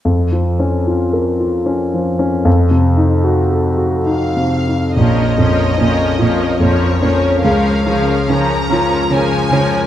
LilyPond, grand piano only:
\new Staff \with { instrumentName = "Grand piano" } { \time 3/4 \key bes \minor \tempo 4 = 74 \tuplet 3/2 { f,8 f8 des'8 f'8 bes'8 f'8 des'8 f8 des'8 } | \tuplet 3/2 { f,8 c8 ees'8 ges'8 a'8 ges'8 ees'8 c8 ees'8 } | bes,,8 f,8 des'8 f'8 f,8 des'8 | des,8 des8 des'8 f'8 des8 des'8 | }